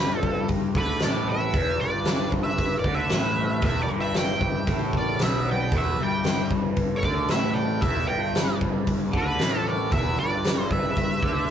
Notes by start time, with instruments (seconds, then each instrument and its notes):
Already playing: picked electric bass G1, overdriven electric guitar G2, lead electric guitar G4 B4
0.16 lead electric guitar F4 A4
0.23 kick
0.48 kick, open hi-hat
0.75 picked electric bass D2, overdriven electric guitar D3, lead electric guitar A4 B4, kick
0.99 picked electric bass A1, lead electric guitar D5, snare, open hi-hat
1.04 overdriven electric guitar A2, lead electric guitar B4
1.30 lead electric guitar B4 E5
1.53 picked electric bass E1, overdriven electric guitar E2, kick, open hi-hat
1.81 picked electric bass G1, overdriven electric guitar G2, lead electric guitar B4 D5
2.05 snare, open hi-hat
2.32 kick
2.43 lead electric guitar B4 E5
2.58 kick, open hi-hat
2.78 lead electric guitar A#4 D5
2.84 picked electric bass D2, overdriven electric guitar D3, kick
2.95 lead electric guitar B4 E5
3.09 picked electric bass A1, overdriven electric guitar A2, snare, open hi-hat
3.62 picked electric bass E1, overdriven electric guitar E2, lead electric guitar B4 E5, kick, open hi-hat
3.83 lead electric guitar A#4 D5
3.89 picked electric bass G1, overdriven electric guitar G2
4.00 lead electric guitar B4 E5
4.14 lead electric guitar G5, snare, open hi-hat
4.19 lead electric guitar E5
4.41 kick
4.67 picked electric bass A1, overdriven electric guitar A2, kick, open hi-hat
4.93 lead electric guitar D5, kick
4.99 lead electric guitar A#4
5.19 picked electric bass B1, overdriven electric guitar B2, lead electric guitar B4 E5, snare, open hi-hat
5.48 lead electric guitar D5 G5
5.72 picked electric bass E1, overdriven electric guitar E2, lead electric guitar B4, kick, open hi-hat
5.78 lead electric guitar E5
5.97 picked electric bass G1, overdriven electric guitar G2, lead electric guitar E5
6.03 lead electric guitar G5
6.24 snare, open hi-hat
6.51 kick
6.76 kick, open hi-hat
6.96 lead electric guitar A4 C#5
7.03 picked electric bass D2, overdriven electric guitar D3, lead electric guitar A#4 D5, kick
7.28 picked electric bass A1, overdriven electric guitar A2, lead electric guitar B4 E5, snare, open hi-hat
7.54 lead electric guitar D5 G5
7.81 picked electric bass E1, overdriven electric guitar E2, lead electric guitar B4 E5, kick, open hi-hat
8.07 picked electric bass G1, overdriven electric guitar G2, lead electric guitar E5 G5
8.35 snare, open hi-hat
8.61 kick
8.87 kick, open hi-hat
9.12 picked electric bass D2, overdriven electric guitar D3, kick
9.17 lead electric guitar G4 B4
9.39 picked electric bass A1, overdriven electric guitar A2, snare, open hi-hat
9.68 lead electric guitar A#4 D5
9.91 picked electric bass E1, overdriven electric guitar E2, lead electric guitar B4 E5, kick, open hi-hat
10.18 picked electric bass G1, overdriven electric guitar G2, lead electric guitar B4 D5
10.44 snare, open hi-hat
10.71 lead electric guitar B4 E5, kick
10.97 kick, open hi-hat
11.23 picked electric bass D2, overdriven electric guitar D3, kick